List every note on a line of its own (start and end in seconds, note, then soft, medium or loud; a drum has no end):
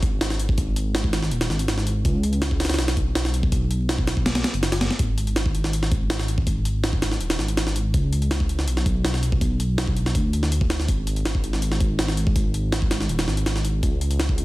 0.00 0.56 G#1 loud
0.00 kick loud
0.00 closed hi-hat medium
0.21 snare loud
0.21 closed hi-hat medium
0.30 snare medium
0.39 closed hi-hat medium
0.49 kick loud
0.58 1.30 G#1 loud
0.58 kick loud
0.58 closed hi-hat medium
0.76 closed hi-hat medium
0.95 snare loud
0.95 closed hi-hat medium
1.04 kick loud
1.13 snare loud
1.13 closed hi-hat medium
1.22 snare soft
1.31 1.48 D#1 loud
1.31 closed hi-hat medium
1.41 snare loud
1.41 closed hi-hat medium
1.50 2.04 G#1 loud
1.50 snare medium
1.59 closed hi-hat medium
1.68 snare loud
1.68 closed hi-hat medium
1.78 snare medium
1.87 closed hi-hat medium
2.05 2.77 C#2 loud
2.05 kick loud
2.05 closed hi-hat medium
2.23 closed hi-hat medium
2.33 closed hi-hat soft
2.42 snare loud
2.42 closed hi-hat medium
2.51 kick medium
2.60 snare medium
2.60 closed hi-hat medium
2.65 snare medium
2.65 closed hi-hat medium
2.69 snare medium
2.69 closed hi-hat medium
2.74 snare medium
2.74 closed hi-hat medium
2.78 3.51 B1 loud
2.78 snare loud
2.78 closed hi-hat medium
2.88 snare loud
2.88 closed hi-hat medium
2.97 kick loud
2.97 closed hi-hat medium
3.15 snare loud
3.15 closed hi-hat medium
3.25 snare medium
3.34 closed hi-hat medium
3.43 kick loud
3.52 4.43 B1 loud
3.52 kick loud
3.52 closed hi-hat medium
3.71 closed hi-hat medium
3.89 snare loud
3.89 closed hi-hat medium
3.98 kick loud
4.07 snare loud
4.07 closed hi-hat medium
4.17 kick medium
4.26 snare loud
4.26 closed hi-hat medium
4.35 snare loud
4.35 closed hi-hat medium
4.44 snare loud
4.44 closed hi-hat medium
4.54 4.89 F#1 medium
4.54 closed hi-hat medium
4.63 snare loud
4.63 closed hi-hat medium
4.72 snare loud
4.72 closed hi-hat medium
4.81 snare loud
4.81 closed hi-hat medium
4.91 snare soft
4.99 6.45 G#1 loud
4.99 kick loud
4.99 closed hi-hat medium
5.18 closed hi-hat medium
5.27 closed hi-hat soft
5.36 snare loud
5.36 closed hi-hat medium
5.46 kick medium
5.55 closed hi-hat medium
5.64 snare soft
5.73 closed hi-hat medium
5.83 snare soft
5.91 kick loud
5.91 closed hi-hat medium
6.10 snare loud
6.10 closed hi-hat medium
6.19 snare medium
6.28 closed hi-hat medium
6.38 kick loud
6.47 7.19 G#1 loud
6.47 kick loud
6.47 closed hi-hat medium
6.65 closed hi-hat medium
6.84 snare loud
6.84 closed hi-hat medium
6.93 kick loud
7.02 snare loud
7.02 closed hi-hat medium
7.11 snare soft
7.20 7.37 D#1 loud
7.20 closed hi-hat medium
7.30 snare loud
7.30 closed hi-hat medium
7.39 7.93 G#1 loud
7.39 snare medium
7.48 closed hi-hat medium
7.57 snare loud
7.57 closed hi-hat medium
7.67 snare medium
7.76 closed hi-hat medium
7.94 8.66 C#2 loud
7.94 kick loud
7.94 closed hi-hat medium
8.13 closed hi-hat medium
8.22 closed hi-hat soft
8.31 snare loud
8.31 closed hi-hat medium
8.40 kick medium
8.49 closed hi-hat medium
8.59 snare soft
8.68 9.40 B1 loud
8.68 closed hi-hat medium
8.77 snare soft
8.86 kick loud
8.86 closed hi-hat medium
9.05 snare loud
9.05 closed hi-hat medium
9.14 snare medium
9.23 closed hi-hat medium
9.32 kick loud
9.41 10.14 B1 loud
9.41 kick loud
9.41 closed hi-hat medium
9.60 closed hi-hat medium
9.78 snare loud
9.78 closed hi-hat medium
9.87 kick loud
9.97 closed hi-hat medium
10.06 snare medium
10.15 10.87 D2 medium
10.15 kick loud
10.15 closed hi-hat medium
10.33 closed hi-hat medium
10.43 snare soft
10.52 closed hi-hat medium
10.61 kick loud
10.70 snare loud
10.70 closed hi-hat medium
10.80 snare soft
10.88 12.34 G#1 loud
10.88 kick loud
10.88 closed hi-hat medium
11.07 closed hi-hat medium
11.16 closed hi-hat soft
11.25 snare loud
11.25 closed hi-hat medium
11.35 kick medium
11.44 closed hi-hat medium
11.53 snare soft
11.62 closed hi-hat medium
11.72 snare soft
11.80 kick loud
11.80 closed hi-hat medium
11.99 snare loud
11.99 closed hi-hat medium
12.08 snare medium
12.17 closed hi-hat medium
12.27 kick loud
12.36 13.08 G#1 loud
12.36 kick loud
12.36 closed hi-hat medium
12.54 closed hi-hat medium
12.72 snare loud
12.72 closed hi-hat medium
12.82 kick loud
12.91 snare loud
12.91 closed hi-hat medium
13.00 snare soft
13.09 13.26 D#1 loud
13.09 closed hi-hat medium
13.19 snare loud
13.19 closed hi-hat medium
13.28 13.81 G#1 medium
13.28 snare medium
13.37 closed hi-hat medium
13.46 snare loud
13.46 closed hi-hat medium
13.56 snare soft
13.65 closed hi-hat medium
13.83 14.45 C#2 loud
13.83 kick loud
13.83 closed hi-hat medium
14.01 closed hi-hat medium
14.11 closed hi-hat soft
14.20 snare loud
14.20 closed hi-hat medium
14.29 kick loud
14.38 closed hi-hat medium